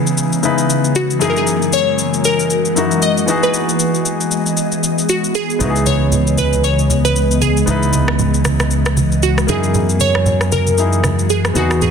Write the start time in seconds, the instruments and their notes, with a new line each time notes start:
Already playing: grand piano C#3 B3 D#4 E4 G#4, ambient pad C#3 E3 G#3 B3 C#4, synth pluck G#4
0.07 shaker
0.18 shaker
0.32 shaker
0.43 grand piano C#3 B3 D#4 E4 B4, shaker
0.58 shaker
0.70 shaker
0.84 shaker
0.95 synth pluck F#4, shaker
1.11 shaker
1.19 grand piano F#2 A#3 D#4 E4, ambient pad E3 A#3 F#4 D#5, synth pluck G#4, shaker
1.24 grand piano G#4
1.30 synth pluck A#4
1.36 synth pluck G#4, shaker
1.47 shaker
1.62 shaker
1.73 synth pluck C#5, shaker
1.99 shaker
2.14 shaker
2.24 synth pluck A#4, shaker
2.39 shaker
2.50 shaker
2.65 shaker
2.75 grand piano F#2 A#3 D#4 E4 F#4, shaker
2.91 shaker
3.02 synth pluck D#5, shaker
3.17 shaker
3.26 grand piano E3 B3 D#4 F#4, ambient pad B3 G#4, shaker
3.31 grand piano G#4
3.43 synth pluck B4, shaker
3.54 shaker
3.69 shaker
3.79 shaker
3.94 shaker
4.06 shaker
4.21 shaker
4.31 shaker
4.46 shaker
4.57 shaker
4.72 shaker
4.83 shaker
4.98 shaker
5.09 synth pluck F#4, shaker
5.24 shaker
5.35 synth pluck G#4, shaker
5.50 shaker
5.59 fingered electric bass C#2, ambient pad C#3 E3, grand piano B3 D#4 E4, low conga, shaker
5.64 grand piano F#4
5.70 grand piano G#4
5.76 shaker
5.86 synth pluck C#5, high conga, shaker
6.12 low conga, shaker
6.27 shaker
6.38 synth pluck B4, high conga, shaker
6.53 high conga, shaker
6.64 synth pluck C#5, shaker
6.79 shaker
6.90 high conga, shaker
7.05 synth pluck B4, shaker
7.16 shaker
7.31 shaker
7.41 synth pluck G#4, high conga, shaker
7.57 shaker
7.66 fingered electric bass C#2, grand piano B3 D#4 E4, low conga, shaker
7.71 grand piano B4
7.83 shaker
7.93 high conga, shaker
8.08 cross-stick
8.19 low conga, shaker
8.34 shaker
8.45 cross-stick, high conga, shaker
8.60 cross-stick, high conga, shaker
8.71 shaker
8.86 cross-stick, shaker
8.97 high conga, shaker
9.12 shaker
9.23 synth pluck F#4, shaker
9.38 cross-stick, shaker
9.47 fingered electric bass F#2, ambient pad E3 G#3 A#3 F#4, grand piano A#3 D#4 E4, synth pluck G#4, high conga, shaker
9.52 grand piano G#4
9.64 shaker
9.74 low conga, shaker
9.89 shaker
10.00 synth pluck C#5, high conga, shaker
10.15 cross-stick
10.26 low conga, shaker
10.41 cross-stick, shaker
10.52 synth pluck A#4, high conga, shaker
10.67 high conga, shaker
10.77 grand piano A#3 D#4 E4 G#4, shaker
10.93 shaker
11.04 cross-stick, high conga, shaker
11.19 shaker
11.30 synth pluck G#4, shaker
11.45 cross-stick, shaker
11.54 fingered electric bass E2, grand piano B3 D#4 F#4, synth pluck F#4, high conga, shaker
11.59 grand piano G#4
11.71 cross-stick, shaker
11.81 synth pluck G#4, low conga, shaker